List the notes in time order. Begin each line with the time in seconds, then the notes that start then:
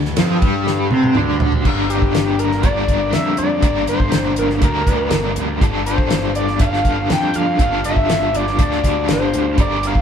Already playing: D2 D3 G3
0.05 G2, snare
0.17 F2 F3, snare, ride
0.42 G2 G3, kick, ride
0.67 D3, snare
0.91 C3 C4, high tom
1.03 high tom
1.15 D2 D3, mid tom
1.30 G3
1.40 floor tom
1.52 floor tom
1.65 G1 G2 D3 G3 A#3 D4 A#4, kick, crash
1.90 G4, closed hi-hat
2.02 kick
2.15 G1, snare, closed hi-hat
2.39 A#4, closed hi-hat
2.52 snare
2.63 G1 G2 D3 G3 A#3 D4 A#4 D5, kick, closed hi-hat
2.88 kick, closed hi-hat
3.13 F2 E5, snare, closed hi-hat
3.37 F2 D5, closed hi-hat
3.62 G1 G2 D3 G3 A#3 D4 A#4, kick, closed hi-hat
3.87 G1 C5, closed hi-hat
4.00 kick
4.12 G1, snare, closed hi-hat
4.36 G1 A#4, closed hi-hat
4.50 snare
4.62 D2 G2 D3 G3 A#3 D4 A#4, kick, closed hi-hat
4.87 D2, kick, closed hi-hat
5.11 G1, snare, closed hi-hat
5.36 D2, closed hi-hat
5.61 G1 G3 D4 F4 A4, kick, closed hi-hat
5.86 C5, closed hi-hat
5.98 kick
6.10 G1, snare, closed hi-hat
6.35 D5, closed hi-hat
6.48 snare
6.59 G1 G3 D4 F4 A4 F5, kick, closed hi-hat
6.74 snare
6.85 kick, closed hi-hat
7.10 F2 G5, snare, closed hi-hat
7.34 F2 F5, closed hi-hat
7.59 G1 G3 D4 F4 A4, kick, closed hi-hat
7.84 G1 E5, closed hi-hat
7.96 kick
8.09 G1, snare, closed hi-hat
8.34 G1 D5, closed hi-hat
8.47 snare
8.59 D2 G3 D4 F4 A4 D5, kick, closed hi-hat
8.72 snare
8.84 D2, kick, closed hi-hat
9.09 G1, snare, closed hi-hat
9.13 C5
9.34 D2, closed hi-hat
9.58 G1 G3 D4 G4 A#4 D5, kick, closed hi-hat
9.83 F5, closed hi-hat
9.95 kick